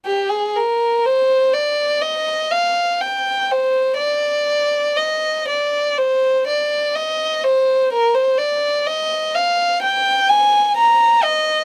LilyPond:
\new Staff \with { instrumentName = "Violin" } { \time 4/4 \key c \minor \tempo 4 = 62 g'16 aes'16 bes'8 c''8 d''8 ees''8 f''8 g''8 c''8 | d''4 ees''8 d''8 c''8 d''8 ees''8 c''8 | bes'16 c''16 d''8 ees''8 f''8 g''8 aes''8 bes''8 ees''8 | }